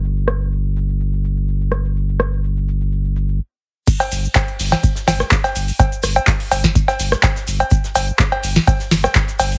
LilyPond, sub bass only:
\new Staff \with { instrumentName = "Sub bass" } { \clef bass \time 4/4 \key c \dorian \tempo 4 = 125 g,,1~ | g,,2. r4 | r8 g,,8 r8 g,,8 r8 g,,8 r8 g,,8 | r8 g,,8 r8 g,,8 r8 g,,8 r8 g,,8 |
r8 g,,8 r8 g,,8 r8 g,,8 r8 g,,8 | }